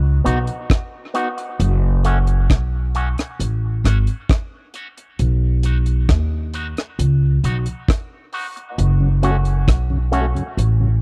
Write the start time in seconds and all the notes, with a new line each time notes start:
Already playing: C#2
0.24 B1 B3 D#4 F#4, closed hi-hat
0.47 closed hi-hat
0.70 kick, cross-stick, closed hi-hat
1.14 B3 D#4 F#4, closed hi-hat
1.38 muted clean electric guitar stroke, closed hi-hat
1.60 F#1, closed hi-hat
2.04 A3 C#4 F#4, closed hi-hat
2.27 closed hi-hat
2.50 B1, kick, cross-stick, closed hi-hat
2.95 A3 C#4 F#4, closed hi-hat
3.18 cross-stick, closed hi-hat
3.40 A1, closed hi-hat
3.84 G#1 A3 C#4 F#4, cross-stick, closed hi-hat
4.07 closed hi-hat
4.29 kick, cross-stick, closed hi-hat
4.74 A3 C#4 F#4, closed hi-hat
4.97 muted clean electric guitar stroke, closed hi-hat
5.19 B1, closed hi-hat
5.63 B3 D#4 F#4, closed hi-hat
5.86 closed hi-hat
6.09 D#2, kick, cross-stick, closed hi-hat
6.53 B3 D#4 F#4, closed hi-hat
6.77 cross-stick, closed hi-hat
6.99 C#2, closed hi-hat
7.44 B1 B3 D#4 F#4, closed hi-hat
7.66 closed hi-hat
7.88 kick, cross-stick, closed hi-hat
8.32 B3 D#4 F#4, open hi-hat
8.56 muted clean electric guitar stroke, closed hi-hat
8.78 F#1, closed hi-hat
9.00 F#2 C#3
9.22 A3 C#4 F#4, closed hi-hat
9.45 closed hi-hat
9.68 B1, kick, cross-stick, closed hi-hat
9.90 F#2 C#3
10.12 A3 C#4 F#4, closed hi-hat
10.35 F#2 C#3, closed hi-hat
10.57 A1, closed hi-hat
10.80 F#2 C#3